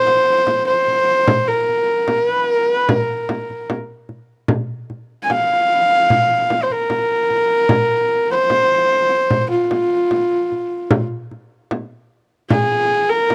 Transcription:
0.00 0.67 C5 loud
0.07 frame drum soft
0.47 frame drum medium
0.67 1.49 C5 loud
0.87 frame drum soft
1.28 frame drum medium
1.48 2.27 A#4 medium
1.69 frame drum soft
2.08 frame drum medium
2.27 2.49 B4 medium
2.49 2.72 A#4 medium
2.72 2.93 B4 medium
2.89 frame drum medium
2.93 3.71 A#4 medium
3.29 frame drum medium
3.50 frame drum soft
3.70 frame drum medium
4.09 frame drum soft
4.48 frame drum medium
4.90 frame drum soft
5.23 5.33 G#5 medium
5.30 6.64 F5 loud
5.30 frame drum medium
6.10 frame drum medium
6.50 frame drum medium
6.63 6.73 C5 medium
6.70 8.31 A#4 medium
6.70 frame drum soft
6.90 frame drum medium
7.30 frame drum soft
7.69 frame drum medium
8.32 9.47 C5 loud
8.50 frame drum medium
9.30 frame drum medium
9.52 11.05 F4 medium
9.71 frame drum medium
10.11 frame drum medium
10.52 frame drum soft
10.91 frame drum medium
11.31 frame drum soft
11.71 frame drum medium
12.50 13.11 G#4 medium
12.50 frame drum medium
12.91 frame drum soft
13.09 13.35 A#4 medium
13.30 frame drum medium

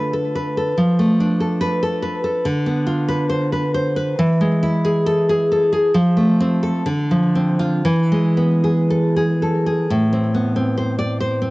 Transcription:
0.00 0.73 D3 medium
0.00 0.56 A3 medium
0.00 0.78 F4 medium
0.00 0.12 A4 medium
0.00 0.13 B4 medium
0.13 0.56 A4 medium
0.35 0.78 B4 medium
0.57 0.78 A4 medium
0.78 2.43 F3 medium
0.99 2.25 A3 medium
1.20 2.47 D4 medium
1.40 1.81 A4 medium
1.61 1.82 B4 medium
1.83 2.23 A4 medium
2.02 2.46 B4 medium
2.24 2.46 A4 medium
2.45 4.14 D3 medium
2.66 3.96 B3 medium
2.87 4.18 F4 medium
3.08 3.29 B4 medium
3.30 3.52 C5 medium
3.52 3.74 B4 medium
3.74 4.19 C5 medium
3.96 4.19 B4 medium
4.19 5.91 E3 loud
4.41 5.73 G#3 medium
4.63 5.95 E4 medium
4.85 5.28 G#4 medium
5.06 5.28 A4 medium
5.29 5.71 G#4 medium
5.52 5.95 A4 medium
5.73 5.95 G#4 medium
5.94 6.83 F3 loud
6.17 6.85 A3 medium
6.40 6.87 C4 medium
6.63 6.86 A4 medium
6.86 7.82 D3 medium
7.11 7.84 F3 medium
7.35 7.86 C4 medium
7.59 7.85 F4 loud
7.85 9.86 E3 loud
8.12 9.67 G#3 medium
8.37 9.90 B3 medium
8.64 9.15 G#4 medium
8.91 9.16 A4 medium
9.17 9.65 G#4 medium
9.42 9.90 A4 medium
9.66 9.90 G#4 medium
9.90 11.50 A2 medium
10.13 10.55 C4 medium
10.35 11.50 B3 medium
10.56 11.40 C4 medium
10.78 10.98 C5 medium
10.99 11.20 D5 medium
11.20 11.50 C5 medium
11.42 11.50 C4 medium

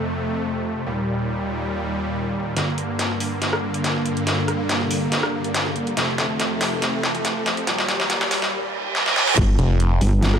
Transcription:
0.00 0.85 F2 medium
0.00 0.85 C3 medium
0.00 0.85 A3 medium
0.86 2.55 D#2 medium
0.86 2.55 A#2 medium
0.86 2.55 G3 medium
2.57 5.94 G2 medium
2.57 5.94 D3 medium
2.57 5.94 A#3 medium
2.57 snare soft
2.57 closed hi-hat medium
2.57 riser medium
2.78 closed hi-hat medium
2.99 snare soft
2.99 closed hi-hat medium
3.20 open hi-hat medium
3.42 snare soft
3.42 closed hi-hat medium
3.53 cross-stick medium
3.74 closed hi-hat medium
3.84 snare medium
3.84 closed hi-hat medium
4.06 closed hi-hat medium
4.17 closed hi-hat medium
4.27 snare medium
4.27 closed hi-hat medium
4.48 cross-stick medium
4.48 closed hi-hat medium
4.69 snare medium
4.69 closed hi-hat medium
4.91 open hi-hat medium
5.12 snare medium
5.12 closed hi-hat medium
5.23 cross-stick medium
5.44 closed hi-hat medium
5.54 snare medium
5.54 closed hi-hat medium
5.76 closed hi-hat medium
5.87 closed hi-hat medium
5.97 7.66 F2 medium
5.97 7.66 C3 medium
5.97 7.66 A3 medium
5.97 snare medium
5.97 closed hi-hat medium
6.18 snare medium
6.18 closed hi-hat medium
6.40 snare medium
6.40 closed hi-hat medium
6.61 snare medium
6.61 open hi-hat medium
6.82 snare medium
6.82 closed hi-hat medium
7.03 snare medium
7.15 closed hi-hat medium
7.25 snare medium
7.25 closed hi-hat medium
7.46 snare medium
7.46 closed hi-hat medium
7.57 closed hi-hat medium
7.67 9.36 D#2 medium
7.67 9.36 A#2 medium
7.67 9.36 G3 medium
7.67 snare medium
7.67 closed hi-hat medium
7.79 snare medium
7.89 snare medium
7.89 closed hi-hat medium
8.00 snare medium
8.10 snare loud
8.10 closed hi-hat medium
8.21 snare medium
8.31 snare loud
8.31 open hi-hat medium
8.42 snare medium
8.52 reverse cymbal medium
8.95 snare medium
9.06 snare medium
9.16 snare medium
9.27 snare medium
9.37 9.57 G1 loud
9.37 kick loud
9.37 closed hi-hat medium
9.37 crash loud
9.59 10.00 F1 loud
9.59 closed hi-hat medium
9.80 closed hi-hat medium
10.01 10.39 G1 loud
10.01 open hi-hat loud
10.23 snare loud
10.23 closed hi-hat medium
10.34 cross-stick medium

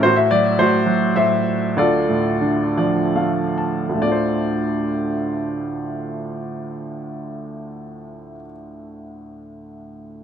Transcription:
0.03 0.58 A2 medium
0.03 0.60 F#4 soft
0.03 0.16 C5 medium
0.16 0.31 E5 medium
0.31 0.85 F#3 soft
0.31 0.57 D5 medium
0.59 1.14 A2 soft
0.59 1.43 F#4 soft
0.59 1.12 C5 medium
0.86 1.73 F#3 soft
1.16 1.75 A2 soft
1.16 1.73 C5 soft
1.16 1.73 E5 medium
1.77 3.88 D2 soft
1.77 3.56 F4 soft
1.77 3.55 A4 soft
1.77 2.76 D5 medium
2.09 3.54 A2 soft
2.41 3.96 D3 soft
2.77 3.98 F3 soft
2.77 3.14 D5 soft
3.15 3.98 A3 soft
3.15 3.55 F5 soft
3.58 3.98 A5 soft
3.89 8.31 D2 soft
3.94 8.36 A2 soft
3.98 8.40 D3 soft
3.98 8.44 D5 soft
4.03 8.45 A3 soft
4.07 8.49 F4 soft
4.12 8.54 C5 soft

